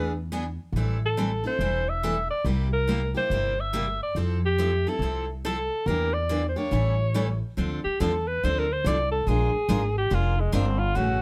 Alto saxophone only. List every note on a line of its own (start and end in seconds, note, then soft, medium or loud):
0.00 0.17 B4 medium
1.06 1.43 A4 medium
1.47 1.91 C5 medium
1.89 2.30 E5 loud
2.30 2.44 D5 medium
2.73 3.12 A#4 medium
3.17 3.62 C5 medium
3.60 4.02 E5 loud
4.03 4.16 D5 medium
4.46 4.90 G4 medium
4.89 5.30 A4 medium
5.45 5.89 A4 medium
5.87 6.15 A#4 medium
6.14 6.47 D5 medium
6.49 6.59 C5 medium
6.57 7.42 C#5 medium
7.84 8.02 G4 medium
8.00 8.29 A4 medium
8.27 8.46 B4 loud
8.44 8.60 C5 loud
8.59 8.74 A#4 medium
8.73 8.88 C5 medium
8.87 9.11 D5 loud
9.11 9.29 A4 medium
9.27 9.96 G#4 medium
9.98 10.16 G4 medium
10.14 10.42 F4 medium
10.40 10.55 G#3 medium
10.54 10.81 C4 medium
10.79 10.97 F4 loud
10.96 11.22 F#4 loud